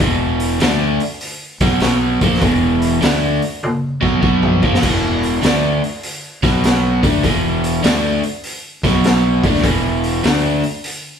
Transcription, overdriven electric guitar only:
0, 0, Header, 1, 2, 480
1, 0, Start_track
1, 0, Tempo, 601805
1, 13, Time_signature, 4, 2, 24, 8
1, 8930, End_track
2, 0, Start_track
2, 0, Title_t, "Overdriven electric guitar"
2, 0, Program_c, 0, 29
2, 1, Note_on_c, 0, 40, 85
2, 4, Note_on_c, 0, 47, 100
2, 12, Note_on_c, 0, 52, 100
2, 478, Note_off_c, 0, 47, 0
2, 481, Note_off_c, 0, 40, 0
2, 481, Note_on_c, 0, 50, 86
2, 484, Note_off_c, 0, 52, 0
2, 487, Note_on_c, 0, 57, 93
2, 494, Note_on_c, 0, 62, 98
2, 795, Note_off_c, 0, 50, 0
2, 798, Note_off_c, 0, 57, 0
2, 801, Note_off_c, 0, 62, 0
2, 1285, Note_on_c, 0, 47, 95
2, 1289, Note_on_c, 0, 54, 98
2, 1294, Note_on_c, 0, 59, 107
2, 1430, Note_off_c, 0, 47, 0
2, 1436, Note_off_c, 0, 54, 0
2, 1439, Note_on_c, 0, 47, 84
2, 1440, Note_off_c, 0, 59, 0
2, 1445, Note_on_c, 0, 54, 81
2, 1450, Note_on_c, 0, 59, 92
2, 1754, Note_off_c, 0, 47, 0
2, 1757, Note_off_c, 0, 54, 0
2, 1759, Note_off_c, 0, 59, 0
2, 1765, Note_on_c, 0, 53, 94
2, 1766, Note_on_c, 0, 46, 86
2, 1770, Note_on_c, 0, 58, 102
2, 1917, Note_on_c, 0, 40, 95
2, 1923, Note_off_c, 0, 46, 0
2, 1923, Note_off_c, 0, 53, 0
2, 1926, Note_off_c, 0, 58, 0
2, 1926, Note_on_c, 0, 47, 90
2, 1928, Note_on_c, 0, 52, 96
2, 2397, Note_off_c, 0, 47, 0
2, 2398, Note_off_c, 0, 40, 0
2, 2400, Note_on_c, 0, 50, 78
2, 2403, Note_off_c, 0, 52, 0
2, 2407, Note_on_c, 0, 57, 84
2, 2414, Note_on_c, 0, 62, 97
2, 2714, Note_off_c, 0, 50, 0
2, 2717, Note_off_c, 0, 57, 0
2, 2721, Note_off_c, 0, 62, 0
2, 3200, Note_on_c, 0, 47, 85
2, 3206, Note_on_c, 0, 54, 88
2, 3211, Note_on_c, 0, 59, 94
2, 3351, Note_off_c, 0, 47, 0
2, 3356, Note_off_c, 0, 54, 0
2, 3360, Note_off_c, 0, 59, 0
2, 3361, Note_on_c, 0, 47, 79
2, 3366, Note_on_c, 0, 54, 84
2, 3370, Note_on_c, 0, 59, 85
2, 3674, Note_off_c, 0, 47, 0
2, 3676, Note_off_c, 0, 54, 0
2, 3678, Note_off_c, 0, 59, 0
2, 3685, Note_on_c, 0, 46, 90
2, 3694, Note_on_c, 0, 53, 93
2, 3697, Note_on_c, 0, 58, 88
2, 3839, Note_off_c, 0, 46, 0
2, 3840, Note_on_c, 0, 40, 86
2, 3842, Note_on_c, 0, 47, 89
2, 3847, Note_off_c, 0, 53, 0
2, 3848, Note_off_c, 0, 58, 0
2, 3852, Note_on_c, 0, 52, 89
2, 4315, Note_off_c, 0, 47, 0
2, 4318, Note_on_c, 0, 50, 81
2, 4319, Note_off_c, 0, 40, 0
2, 4325, Note_off_c, 0, 52, 0
2, 4330, Note_on_c, 0, 57, 78
2, 4331, Note_on_c, 0, 62, 81
2, 4632, Note_off_c, 0, 50, 0
2, 4638, Note_off_c, 0, 57, 0
2, 4639, Note_off_c, 0, 62, 0
2, 5131, Note_on_c, 0, 47, 78
2, 5135, Note_on_c, 0, 54, 98
2, 5141, Note_on_c, 0, 59, 107
2, 5599, Note_off_c, 0, 47, 0
2, 5601, Note_off_c, 0, 54, 0
2, 5604, Note_off_c, 0, 59, 0
2, 5605, Note_on_c, 0, 50, 85
2, 5608, Note_on_c, 0, 57, 92
2, 5616, Note_on_c, 0, 62, 93
2, 5763, Note_off_c, 0, 50, 0
2, 5764, Note_off_c, 0, 57, 0
2, 5765, Note_on_c, 0, 40, 81
2, 5768, Note_off_c, 0, 62, 0
2, 5772, Note_on_c, 0, 47, 96
2, 5775, Note_on_c, 0, 52, 91
2, 6237, Note_off_c, 0, 47, 0
2, 6240, Note_on_c, 0, 50, 79
2, 6242, Note_off_c, 0, 40, 0
2, 6244, Note_off_c, 0, 52, 0
2, 6247, Note_on_c, 0, 57, 87
2, 6250, Note_on_c, 0, 62, 90
2, 6553, Note_off_c, 0, 50, 0
2, 6557, Note_off_c, 0, 57, 0
2, 6558, Note_off_c, 0, 62, 0
2, 7053, Note_on_c, 0, 47, 84
2, 7059, Note_on_c, 0, 54, 95
2, 7059, Note_on_c, 0, 59, 98
2, 7521, Note_off_c, 0, 47, 0
2, 7524, Note_off_c, 0, 54, 0
2, 7524, Note_off_c, 0, 59, 0
2, 7540, Note_on_c, 0, 50, 80
2, 7546, Note_on_c, 0, 57, 86
2, 7550, Note_on_c, 0, 62, 105
2, 7681, Note_on_c, 0, 40, 94
2, 7686, Note_off_c, 0, 50, 0
2, 7688, Note_off_c, 0, 57, 0
2, 7689, Note_on_c, 0, 47, 96
2, 7691, Note_on_c, 0, 52, 102
2, 7695, Note_off_c, 0, 62, 0
2, 8160, Note_off_c, 0, 40, 0
2, 8164, Note_off_c, 0, 47, 0
2, 8165, Note_off_c, 0, 52, 0
2, 8168, Note_on_c, 0, 50, 90
2, 8174, Note_on_c, 0, 57, 87
2, 8176, Note_on_c, 0, 62, 81
2, 8478, Note_off_c, 0, 50, 0
2, 8481, Note_off_c, 0, 57, 0
2, 8482, Note_off_c, 0, 62, 0
2, 8930, End_track
0, 0, End_of_file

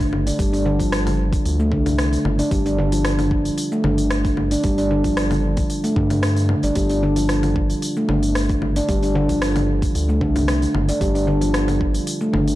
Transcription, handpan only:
0, 0, Header, 1, 2, 480
1, 0, Start_track
1, 0, Tempo, 530973
1, 353, Time_signature, 4, 2, 24, 8
1, 11347, End_track
2, 0, Start_track
2, 0, Title_t, "Handpan"
2, 0, Program_c, 0, 114
2, 241, Note_on_c, 0, 62, 74
2, 348, Note_off_c, 0, 62, 0
2, 353, Note_on_c, 0, 55, 78
2, 467, Note_off_c, 0, 55, 0
2, 479, Note_on_c, 0, 62, 77
2, 544, Note_off_c, 0, 62, 0
2, 593, Note_on_c, 0, 50, 104
2, 665, Note_off_c, 0, 50, 0
2, 716, Note_on_c, 0, 53, 78
2, 825, Note_off_c, 0, 53, 0
2, 1443, Note_on_c, 0, 57, 75
2, 1543, Note_off_c, 0, 57, 0
2, 1554, Note_on_c, 0, 50, 103
2, 1625, Note_off_c, 0, 50, 0
2, 2161, Note_on_c, 0, 62, 74
2, 2268, Note_off_c, 0, 62, 0
2, 2273, Note_on_c, 0, 55, 78
2, 2387, Note_off_c, 0, 55, 0
2, 2403, Note_on_c, 0, 62, 77
2, 2465, Note_off_c, 0, 62, 0
2, 2517, Note_on_c, 0, 50, 112
2, 2587, Note_off_c, 0, 50, 0
2, 2641, Note_on_c, 0, 53, 76
2, 2748, Note_off_c, 0, 53, 0
2, 3363, Note_on_c, 0, 57, 76
2, 3463, Note_off_c, 0, 57, 0
2, 3475, Note_on_c, 0, 50, 99
2, 3546, Note_off_c, 0, 50, 0
2, 4082, Note_on_c, 0, 62, 77
2, 4188, Note_off_c, 0, 62, 0
2, 4197, Note_on_c, 0, 55, 85
2, 4308, Note_off_c, 0, 55, 0
2, 4322, Note_on_c, 0, 62, 75
2, 4385, Note_off_c, 0, 62, 0
2, 4436, Note_on_c, 0, 50, 108
2, 4506, Note_off_c, 0, 50, 0
2, 4558, Note_on_c, 0, 53, 75
2, 4666, Note_off_c, 0, 53, 0
2, 5279, Note_on_c, 0, 57, 78
2, 5381, Note_off_c, 0, 57, 0
2, 5393, Note_on_c, 0, 50, 106
2, 5465, Note_off_c, 0, 50, 0
2, 5999, Note_on_c, 0, 62, 76
2, 6107, Note_off_c, 0, 62, 0
2, 6110, Note_on_c, 0, 55, 83
2, 6225, Note_off_c, 0, 55, 0
2, 6238, Note_on_c, 0, 62, 74
2, 6303, Note_off_c, 0, 62, 0
2, 6353, Note_on_c, 0, 50, 108
2, 6425, Note_off_c, 0, 50, 0
2, 6480, Note_on_c, 0, 53, 82
2, 6587, Note_off_c, 0, 53, 0
2, 7203, Note_on_c, 0, 57, 78
2, 7303, Note_off_c, 0, 57, 0
2, 7314, Note_on_c, 0, 50, 97
2, 7386, Note_off_c, 0, 50, 0
2, 7922, Note_on_c, 0, 62, 80
2, 8028, Note_off_c, 0, 62, 0
2, 8035, Note_on_c, 0, 55, 85
2, 8148, Note_off_c, 0, 55, 0
2, 8163, Note_on_c, 0, 62, 74
2, 8226, Note_off_c, 0, 62, 0
2, 8274, Note_on_c, 0, 50, 117
2, 8345, Note_off_c, 0, 50, 0
2, 8401, Note_on_c, 0, 53, 80
2, 8507, Note_off_c, 0, 53, 0
2, 9120, Note_on_c, 0, 57, 80
2, 9221, Note_off_c, 0, 57, 0
2, 9232, Note_on_c, 0, 50, 104
2, 9304, Note_off_c, 0, 50, 0
2, 9844, Note_on_c, 0, 62, 81
2, 9949, Note_off_c, 0, 62, 0
2, 9954, Note_on_c, 0, 55, 86
2, 10067, Note_off_c, 0, 55, 0
2, 10079, Note_on_c, 0, 62, 79
2, 10144, Note_off_c, 0, 62, 0
2, 10189, Note_on_c, 0, 50, 113
2, 10263, Note_off_c, 0, 50, 0
2, 10316, Note_on_c, 0, 53, 83
2, 10425, Note_off_c, 0, 53, 0
2, 11037, Note_on_c, 0, 57, 75
2, 11140, Note_off_c, 0, 57, 0
2, 11149, Note_on_c, 0, 50, 104
2, 11223, Note_off_c, 0, 50, 0
2, 11347, End_track
0, 0, End_of_file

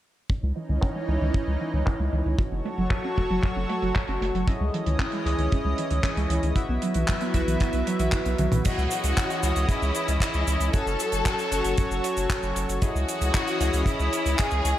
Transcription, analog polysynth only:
0, 0, Header, 1, 2, 480
1, 0, Start_track
1, 0, Key_signature, 4, "minor"
1, 0, Tempo, 521739
1, 277, Time_signature, 4, 2, 24, 8
1, 13605, End_track
2, 0, Start_track
2, 0, Title_t, "Analog polysynth"
2, 0, Program_c, 0, 90
2, 4116, Note_on_c, 0, 64, 71
2, 4116, Note_on_c, 0, 68, 66
2, 4116, Note_on_c, 0, 73, 66
2, 4116, Note_on_c, 0, 75, 78
2, 4808, Note_off_c, 0, 64, 0
2, 4808, Note_off_c, 0, 68, 0
2, 4808, Note_off_c, 0, 73, 0
2, 4808, Note_off_c, 0, 75, 0
2, 4837, Note_on_c, 0, 64, 75
2, 4837, Note_on_c, 0, 68, 72
2, 4837, Note_on_c, 0, 73, 72
2, 4837, Note_on_c, 0, 75, 87
2, 5528, Note_off_c, 0, 64, 0
2, 5528, Note_off_c, 0, 68, 0
2, 5528, Note_off_c, 0, 73, 0
2, 5528, Note_off_c, 0, 75, 0
2, 5555, Note_on_c, 0, 68, 79
2, 5555, Note_on_c, 0, 73, 79
2, 5555, Note_on_c, 0, 75, 95
2, 5556, Note_on_c, 0, 64, 83
2, 6008, Note_off_c, 0, 64, 0
2, 6008, Note_off_c, 0, 68, 0
2, 6008, Note_off_c, 0, 73, 0
2, 6008, Note_off_c, 0, 75, 0
2, 6036, Note_on_c, 0, 64, 78
2, 6036, Note_on_c, 0, 71, 72
2, 6037, Note_on_c, 0, 66, 72
2, 6037, Note_on_c, 0, 76, 87
2, 6728, Note_off_c, 0, 64, 0
2, 6728, Note_off_c, 0, 66, 0
2, 6728, Note_off_c, 0, 71, 0
2, 6728, Note_off_c, 0, 76, 0
2, 6755, Note_on_c, 0, 66, 77
2, 6756, Note_on_c, 0, 64, 83
2, 6756, Note_on_c, 0, 71, 78
2, 6756, Note_on_c, 0, 76, 91
2, 7332, Note_off_c, 0, 66, 0
2, 7332, Note_off_c, 0, 76, 0
2, 7333, Note_off_c, 0, 64, 0
2, 7333, Note_off_c, 0, 71, 0
2, 7356, Note_on_c, 0, 64, 79
2, 7356, Note_on_c, 0, 66, 74
2, 7356, Note_on_c, 0, 71, 75
2, 7356, Note_on_c, 0, 76, 88
2, 7928, Note_off_c, 0, 64, 0
2, 7928, Note_off_c, 0, 66, 0
2, 7928, Note_off_c, 0, 71, 0
2, 7928, Note_off_c, 0, 76, 0
2, 7957, Note_on_c, 0, 64, 72
2, 7957, Note_on_c, 0, 68, 68
2, 7957, Note_on_c, 0, 73, 64
2, 7958, Note_on_c, 0, 75, 82
2, 8648, Note_off_c, 0, 73, 0
2, 8649, Note_off_c, 0, 64, 0
2, 8649, Note_off_c, 0, 68, 0
2, 8649, Note_off_c, 0, 75, 0
2, 8676, Note_on_c, 0, 64, 80
2, 8676, Note_on_c, 0, 73, 74
2, 8676, Note_on_c, 0, 75, 86
2, 8677, Note_on_c, 0, 68, 72
2, 9368, Note_off_c, 0, 64, 0
2, 9368, Note_off_c, 0, 68, 0
2, 9368, Note_off_c, 0, 73, 0
2, 9368, Note_off_c, 0, 75, 0
2, 9396, Note_on_c, 0, 64, 86
2, 9396, Note_on_c, 0, 73, 76
2, 9396, Note_on_c, 0, 75, 93
2, 9397, Note_on_c, 0, 68, 75
2, 9848, Note_off_c, 0, 64, 0
2, 9848, Note_off_c, 0, 68, 0
2, 9848, Note_off_c, 0, 73, 0
2, 9848, Note_off_c, 0, 75, 0
2, 9877, Note_on_c, 0, 61, 78
2, 9877, Note_on_c, 0, 66, 74
2, 9877, Note_on_c, 0, 69, 75
2, 9877, Note_on_c, 0, 73, 89
2, 10568, Note_off_c, 0, 61, 0
2, 10568, Note_off_c, 0, 66, 0
2, 10568, Note_off_c, 0, 69, 0
2, 10568, Note_off_c, 0, 73, 0
2, 10596, Note_on_c, 0, 61, 86
2, 10596, Note_on_c, 0, 66, 78
2, 10596, Note_on_c, 0, 69, 78
2, 10596, Note_on_c, 0, 73, 95
2, 11768, Note_off_c, 0, 61, 0
2, 11768, Note_off_c, 0, 66, 0
2, 11768, Note_off_c, 0, 69, 0
2, 11768, Note_off_c, 0, 73, 0
2, 11797, Note_on_c, 0, 75, 80
2, 11798, Note_on_c, 0, 64, 72
2, 11798, Note_on_c, 0, 68, 69
2, 11798, Note_on_c, 0, 73, 67
2, 12488, Note_off_c, 0, 75, 0
2, 12489, Note_off_c, 0, 64, 0
2, 12489, Note_off_c, 0, 68, 0
2, 12489, Note_off_c, 0, 73, 0
2, 12516, Note_on_c, 0, 68, 74
2, 12516, Note_on_c, 0, 73, 72
2, 12517, Note_on_c, 0, 64, 80
2, 12517, Note_on_c, 0, 75, 88
2, 13208, Note_off_c, 0, 64, 0
2, 13208, Note_off_c, 0, 68, 0
2, 13208, Note_off_c, 0, 73, 0
2, 13208, Note_off_c, 0, 75, 0
2, 13236, Note_on_c, 0, 64, 84
2, 13236, Note_on_c, 0, 68, 78
2, 13236, Note_on_c, 0, 73, 79
2, 13236, Note_on_c, 0, 75, 92
2, 13605, Note_off_c, 0, 64, 0
2, 13605, Note_off_c, 0, 68, 0
2, 13605, Note_off_c, 0, 73, 0
2, 13605, Note_off_c, 0, 75, 0
2, 13605, End_track
0, 0, End_of_file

